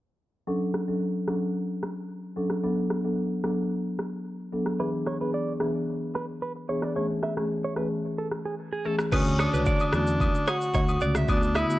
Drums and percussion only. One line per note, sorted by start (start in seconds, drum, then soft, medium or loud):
0.47 shaker medium
0.61 shaker soft
0.74 cross-stick medium
0.74 shaker soft
0.89 shaker medium
1.01 shaker medium
1.15 shaker medium
1.28 cross-stick medium
1.28 shaker medium
1.42 shaker medium
1.56 shaker medium
1.70 shaker medium
1.82 cross-stick medium
1.82 shaker medium
1.96 shaker medium
2.09 shaker medium
2.24 shaker medium
2.36 shaker soft
2.50 cross-stick medium
2.50 shaker medium
2.64 shaker medium
2.78 shaker soft
2.90 cross-stick medium
2.90 shaker soft
3.05 shaker medium
3.17 shaker medium
3.31 shaker medium
3.44 cross-stick medium
3.44 shaker medium
3.58 shaker medium
3.72 shaker medium
3.86 shaker medium
3.99 cross-stick medium
3.99 shaker soft
4.13 shaker medium
4.25 shaker medium
4.40 shaker medium
4.52 shaker soft
4.66 cross-stick medium
4.66 shaker medium
4.80 shaker medium
4.94 shaker soft
5.06 cross-stick medium
5.06 shaker soft
5.22 shaker medium
5.33 shaker medium
5.47 shaker medium
5.60 cross-stick loud
5.60 shaker medium
5.75 shaker medium
5.88 shaker medium
6.02 shaker medium
6.15 cross-stick medium
6.15 shaker medium
6.29 shaker medium
6.42 shaker medium
6.56 shaker medium
6.68 shaker soft
6.82 cross-stick medium
6.82 shaker medium
6.96 shaker medium
7.10 shaker soft
7.23 cross-stick medium
7.23 shaker soft
7.37 cross-stick loud
7.37 shaker medium
7.50 shaker medium
7.63 shaker medium
7.76 cross-stick medium
7.76 shaker medium
7.91 shaker medium
8.05 shaker medium
8.19 shaker medium
8.31 cross-stick medium
8.31 shaker medium
8.45 shaker medium
8.58 shaker medium
8.72 shaker medium
8.84 shaker soft
8.99 cross-stick medium
8.99 shaker medium
9.12 kick loud
9.12 crash medium
9.12 high agogo medium
9.12 shaker medium
9.26 shaker soft
9.39 cross-stick medium
9.39 high agogo medium
9.39 shaker soft
9.54 shaker medium
9.66 kick medium
9.66 shaker medium
9.80 high agogo medium
9.80 shaker medium
9.93 cross-stick loud
9.93 shaker medium
10.07 shaker medium
10.20 kick medium
10.20 high agogo medium
10.20 shaker medium
10.35 shaker medium
10.47 cross-stick medium
10.47 high agogo medium
10.47 shaker medium
10.61 shaker medium
10.74 kick loud
10.74 low woodblock medium
10.74 shaker medium
10.89 high agogo medium
10.89 shaker medium
11.01 shaker soft
11.15 cross-stick medium
11.15 shaker medium
11.28 kick loud
11.28 high agogo medium
11.28 shaker medium
11.42 shaker medium
11.55 cross-stick medium
11.55 high agogo medium
11.55 shaker soft
11.70 shaker medium